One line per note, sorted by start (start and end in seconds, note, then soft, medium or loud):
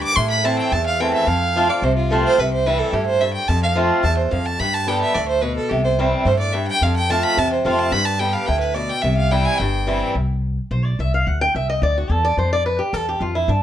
0.00 0.15 G2 medium
0.00 0.17 D6 loud
0.16 0.69 A2 medium
0.16 0.58 A2 medium
0.16 0.29 C6 loud
0.30 0.47 B5 loud
0.44 0.70 E3 medium
0.44 0.70 A3 medium
0.44 0.71 C4 medium
0.44 0.71 E4 medium
0.44 0.58 A5 medium
0.59 0.74 G5 medium
0.72 1.25 E2 medium
0.72 1.13 E2 medium
0.72 0.86 A5 loud
0.86 1.02 F5 loud
1.00 1.26 E3 medium
1.00 1.26 A3 medium
1.00 1.27 C4 medium
1.00 1.27 E4 medium
1.00 1.13 G5 medium
1.14 1.29 E5 loud
1.27 1.68 F2 medium
1.27 1.80 F2 medium
1.27 1.71 F5 loud
1.56 1.69 F3 medium
1.56 1.69 A3 medium
1.56 1.69 C4 loud
1.56 1.68 F4 loud
1.69 1.83 C4 soft
1.69 1.82 F4 medium
1.69 1.85 D5 medium
1.82 2.24 C2 medium
1.82 2.36 C3 loud
1.82 1.96 C5 medium
1.97 2.12 F4 medium
2.10 2.37 F3 medium
2.10 2.37 A3 loud
2.10 2.38 C4 medium
2.10 2.38 F4 loud
2.10 2.24 A4 medium
2.24 2.41 C5 loud
2.38 2.79 C2 medium
2.38 2.91 C3 medium
2.38 2.53 B4 medium
2.54 2.68 C5 loud
2.66 2.92 E3 medium
2.66 2.93 G3 medium
2.66 2.93 C4 medium
2.66 2.93 E4 loud
2.66 2.80 B4 medium
2.78 2.95 A4 medium
2.93 3.34 G2 medium
2.93 3.20 A2 medium
2.93 3.05 G4 medium
3.06 3.23 C5 medium
3.21 3.48 G2 medium
3.21 3.33 E5 medium
3.33 3.50 G5 medium
3.48 3.90 F2 loud
3.48 4.02 F2 medium
3.48 3.62 A5 medium
3.63 3.71 F5 loud
3.75 4.02 F3 medium
3.75 4.03 A3 medium
3.75 4.03 C4 loud
3.75 4.03 F4 loud
4.03 4.28 E2 medium
4.03 4.31 E2 medium
4.03 4.17 A5 medium
4.17 4.33 C5 medium
4.31 4.58 F2 medium
4.31 4.56 F2 medium
4.31 4.47 F5 medium
4.46 4.61 A5 medium
4.60 5.01 G2 medium
4.60 5.13 G2 medium
4.60 4.75 B5 loud
4.74 4.90 A5 loud
4.87 5.14 D3 medium
4.87 5.14 G3 medium
4.87 5.14 B3 medium
4.87 5.15 G4 medium
4.87 5.01 G5 medium
5.01 5.16 E5 loud
5.14 5.57 D2 medium
5.14 5.42 A2 medium
5.14 5.28 D5 medium
5.28 5.43 C5 medium
5.42 5.69 B2 medium
5.42 5.56 B4 medium
5.57 5.71 A4 medium
5.69 6.12 C2 medium
5.69 6.24 C3 medium
5.69 5.84 G4 medium
5.84 5.93 C5 medium
5.99 6.25 E3 medium
5.99 6.25 G3 medium
5.99 6.26 C4 medium
5.99 6.26 E4 medium
6.25 6.67 G2 medium
6.25 6.53 A2 medium
6.25 6.39 C5 medium
6.39 6.55 D5 medium
6.53 6.80 G2 medium
6.53 6.67 E5 medium
6.68 6.84 G5 loud
6.81 7.23 F2 medium
6.81 7.35 F2 medium
6.81 6.96 F5 loud
6.97 7.12 G5 loud
7.10 7.36 F3 medium
7.10 7.36 A3 loud
7.10 7.37 C4 medium
7.10 7.37 F4 loud
7.10 7.25 A5 medium
7.23 7.40 B5 loud
7.37 7.61 E2 medium
7.37 7.90 C3 loud
7.37 7.52 A5 loud
7.53 7.67 C5 medium
7.64 7.89 F2 medium
7.64 7.91 F3 medium
7.64 7.92 A3 medium
7.64 7.92 C4 medium
7.64 7.92 F4 loud
7.64 7.80 F5 medium
7.79 7.94 A5 loud
7.92 8.34 G2 medium
7.92 8.46 G2 medium
7.92 8.07 B5 loud
8.05 8.21 A5 loud
8.19 8.47 D3 medium
8.19 8.47 G3 medium
8.19 8.47 B3 medium
8.19 8.47 G4 medium
8.19 8.35 G5 medium
8.33 8.48 F5 medium
8.46 8.90 D2 medium
8.46 8.75 A2 medium
8.46 8.59 G5 medium
8.60 8.76 B4 medium
8.74 9.02 B2 medium
8.74 8.91 D5 medium
8.90 9.04 G5 loud
9.02 9.45 C2 loud
9.02 9.57 C3 medium
9.02 9.17 E5 medium
9.17 9.33 F5 medium
9.31 9.58 E3 medium
9.31 9.58 G3 medium
9.31 9.58 C4 medium
9.31 9.59 E4 loud
9.31 9.46 G5 medium
9.45 9.60 G#5 loud
9.58 10.01 G1 medium
9.58 10.13 G2 medium
9.58 10.08 G5 medium
9.87 10.14 E3 medium
9.87 10.14 G3 medium
9.87 10.14 C4 medium
9.87 10.15 E4 medium
10.15 10.57 C2 medium
10.71 10.95 B1 medium
10.71 10.85 C5 medium
10.85 10.98 D5 loud
10.99 11.23 C2 medium
10.99 11.13 E5 medium
11.14 11.28 F5 loud
11.27 11.48 D2 medium
11.27 11.41 F#5 medium
11.41 11.54 G5 loud
11.55 11.78 C2 medium
11.55 11.69 E5 medium
11.70 11.82 D#5 loud
11.82 12.06 D2 medium
11.82 11.96 D5 medium
11.98 12.11 F#4 medium
12.10 12.33 E2 medium
12.10 12.24 A4 medium
12.25 12.38 D5 loud
12.37 12.79 F2 medium
12.37 12.52 C5 medium
12.53 12.65 D5 loud
12.66 12.79 B4 medium
12.79 12.94 G4 medium
12.93 13.17 E2 loud
12.93 13.07 A4 medium
13.09 13.21 G4 medium
13.21 13.44 F2 medium
13.21 13.35 F4 medium
13.35 13.49 E4 medium
13.48 13.63 G2 loud
13.48 13.63 D4 medium